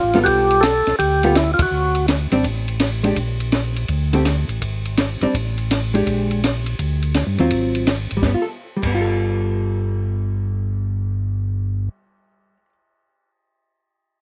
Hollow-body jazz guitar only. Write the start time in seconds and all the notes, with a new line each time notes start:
0.15 G3 B3 F4 A4
1.24 G3 B3 F4 A4
2.32 G3 C4 D4
3.04 G#3 D4 G4
4.13 D3 A3 C4 G4
5.23 G3 C4 D4
5.94 G#3 D4 G4
7.40 F#3 C4 F4
8.17 G3
8.26 B3
8.34 F4
8.42 A4
8.77 G3
8.87 B3
8.95 F4
9.01 A4